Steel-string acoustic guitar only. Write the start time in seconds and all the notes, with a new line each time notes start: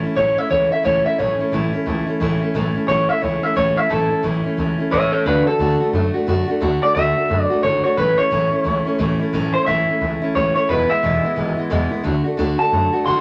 0.03 A3 C#4 E4
0.16 A2 E3 A3 C#4 E4
0.37 A3 C#4 E4
0.49 E3 A3 C#4 E4
0.71 A3 C#4 E4
0.83 A2 E3 A3 C#4 E4
1.05 A3 C#4 E4
1.18 A2 E3 A3 C#4 E4
1.39 A3 C#4 E4
1.52 A2 E3 A3 C#4 E4
1.73 A3 C#4 E4
1.86 E3 A3 C#4 E4
2.07 A3 C#4 E4
2.20 A2 E3 A3 C#4 E4
2.41 A3 C#4 E4
2.54 A2 E3 A3 C#4 E4
2.74 A3 C#4 E4
2.88 A2 E3 A3 C#4 E4
3.09 A3 C#4 E4
3.21 E3 A3 C#4 E4
3.43 A3 C#4 E4
3.55 A2 E3 A3 C#4 E4
3.76 A3 C#4 E4
3.90 A2 E3 A3 C#4 E4
4.10 A3 C#4 E4
4.23 A2 E3 A3 C#4 E4
4.44 A3 C#4 E4
4.57 E3 A3 C#4 E4
4.78 A3 C#4 E4
4.91 A2 E3 A3 C#4 E4
5.12 A3 C#4 E4
5.26 D3 A3 D4 F#4
5.46 A3 D4 F#4
5.59 D3 A3 D4 F#4
5.80 A3 D4 F#4
5.93 D3 A3 D4 F#4
6.14 A3 D4 F#4
6.27 D3 A3 D4 F#4
6.48 A3 D4 F#4
6.61 D3 A3 D4 F#4
6.81 A3 D4 F#4
6.95 D3 A3 D4 F#4
7.16 A3 D4 F#4
7.29 D3 A3 D4 F#4
7.50 A3 D4 F#4
7.63 D3 A3 D4 F#4
7.84 A3 D4 F#4
7.97 A2 E3 A3 C#4 E4
8.18 A3 C#4 E4
8.30 A2 E3 A3 C#4 E4
8.51 A3 C#4 E4
8.64 E3 A3 C#4 E4
8.85 A3 C#4 E4
8.99 A2 E3 A3 C#4 E4
9.19 A3 C#4 E4
9.33 A2 E3 A3 C#4 E4
9.54 A3 C#4 E4
9.66 A2 E3 A3 C#4 E4
9.88 A3 C#4 E4
10.01 E3 A3 C#4 E4
10.22 A3 C#4 E4
10.35 A2 E3 A3 C#4 E4
10.55 A3 C#4 E4
10.69 E2 B2 E3 G#3 B3 E4
10.89 E3 G#3 B3 E4
11.03 E2 B2 E3 G#3 B3 E4
11.23 E3 G#3 B3 E4
11.36 E3 G#3 B3 E4
11.57 E3 G#3 B3 E4
11.70 E2 B2 E3 G#3 B3 E4
11.91 E3 G#3 B3 E4
12.04 D3 A3 D4 F#4
12.24 A3 D4 F#4
12.37 D3 A3 D4 F#4
12.58 A3 D4 F#4
12.71 D3 A3 D4 F#4
12.92 A3 D4 F#4
13.06 D3 A3 D4 F#4